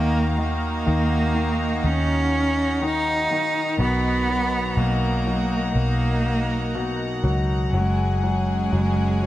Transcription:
Already playing: D#2 D#3 A#3 D#4 F#4 F5 A#5
0.39 D#3 A#3
0.86 D#2 D#3
1.35 D#3
1.84 D#2 C#4
2.81 D#3 D#4
3.31 D#3
3.78 B1 B2 B3 D#4 A#4 F#5
4.29 F#3
4.77 B1 B2 A#3
5.27 F#3
5.75 B1 A#3
6.75 B2
7.23 C#2 F#3
7.72 F#1 F#3 G#3 C#4 G#4 G#5
8.23 F#3 G#3
8.72 F#1 F#3
9.22 F#3

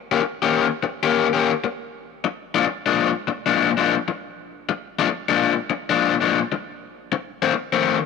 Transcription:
0.12 D#3 A#3 C#4 G4
0.23 muted overdriven electric guitar stroke
0.42 D#3 A#3 C#4 G4
0.83 muted overdriven electric guitar stroke
1.03 D#3 A#3 C#4 G4
1.33 D#3 A#3 C#4 G4
1.64 muted overdriven electric guitar stroke
2.24 muted overdriven electric guitar stroke
2.55 A#2 F3 G#3 D4
2.66 muted overdriven electric guitar stroke
2.86 A#2 F3 G#3 D4
3.28 muted overdriven electric guitar stroke
3.46 A#2 F3 G#3 D4
3.77 A#2 F3 G#3 D4
4.08 muted overdriven electric guitar stroke
4.69 muted overdriven electric guitar stroke
4.99 A#2 F3 G#3 D4
5.09 muted overdriven electric guitar stroke
5.29 A#2 F3 G#3 D4
5.70 muted overdriven electric guitar stroke
5.90 A#2 F3 G#3 D4
6.21 A#2 F3 G#3 D4
6.52 muted overdriven electric guitar stroke
7.12 muted overdriven electric guitar stroke
7.42 F2 D#3 A3 C4
7.54 muted overdriven electric guitar stroke
7.73 F2 D#3 A3 C4

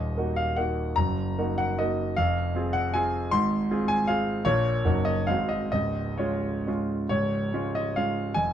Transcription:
Already playing: D#1 D#2 D#5
0.17 A#3 D#4 F#4
0.36 F5
0.56 A#3 D#4 F#4 F#5
0.96 F#1 F#2 A#5
1.38 A#3 D#4 F#4
1.58 F#5
1.79 A#3 D#4 F#4 D#5
2.16 F1 F2 F5
2.55 C4 F4 G#4
2.73 F#5
2.94 C4 F4 G#4 G#5
3.31 G#1 G#2 C6
3.71 C4 F4 G#4
3.88 G#5
4.07 C4 F4 G#4 F5
4.45 A#1 A#2 A#3 F4 C#5
4.85 F#1 F#2 A#3 D#4 F#4
5.05 D#5
5.27 G#1 G#2 G#3 C4 F#4 F5
5.49 D#5
5.72 C#1 C#2 D#5
6.18 G#3 C#4 F4 C#5
6.67 G#3 C#4 F4
7.09 C#1 C#2 C#5
7.53 G#3 C#4 F4
7.75 D#5
7.96 G#3 C#4 F4 F5
8.34 F1 F2 G#5

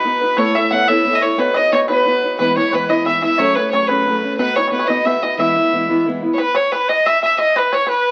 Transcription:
Already playing: B4
0.05 B3 D#4 F#4 B4
0.21 D#4 F#4 B4
0.37 A3 B3 E4 A4 C#5
0.55 E4 A4 C#5 E5
0.71 B3 E4 A4 C#5 F#5
0.88 A3 B3 E4 A4 C#5 E5
1.05 B3 E4 A4 C#5
1.13 D#5
1.21 E4 A4 C#5
1.38 B3 D#4 F#4 B4 C#5
1.54 D#4 F#4 C#5 D#5
1.72 B3 D#4 F#4 C#5
1.88 B3 D#4 F#4 B4 C#5
2.06 B3 D#4 F#4 C#5
2.22 D#4 F#4 C#5
2.38 E3 G#3 B3 E4 B4
2.56 G#3 B3 E4 C#5
2.72 E3 G#3 B3 E4 B4
2.88 E3 G#3 B3 E4 D#5
3.05 E3 G#3 B3 E4 E5
3.22 G#3 B3 E4 E5
3.38 F#3 A3 C#4 G#4 C#5
3.55 A3 C#4 G#4 B4
3.71 F#3 A3 C#4 G#4 C#5
3.88 F#3 A3 C#4 G#4 B4
4.07 F#3 A3 C#4 G#4
4.22 A3 C#4 G#4
4.37 B3 D#4 F#4 B4
4.56 D#4 F#4 B4 C#5
4.68 B3 C#5
4.72 D#4 F#4 B4
4.79 C#5
4.84 B4 D#5 E5
4.88 B3 D#4 F#4 D#5
5.05 B3 D#4 F#4 B4 E5
5.22 D#4 F#4 B4 D#5
5.38 E3 G#3 B3 E4 E5
5.55 G#3 B3 E4
5.72 E3 G#3 B3 E4
5.89 E3 G#3 B3 E4
6.07 E3 G#3 B3 E4
6.22 G#3 B3 E4
6.34 C#5
6.38 B4
6.55 C#5
6.71 B4
6.88 D#5
7.06 E5
7.22 E5
7.38 D#5
7.56 B4
7.72 C#5
7.87 B4
7.91 B4

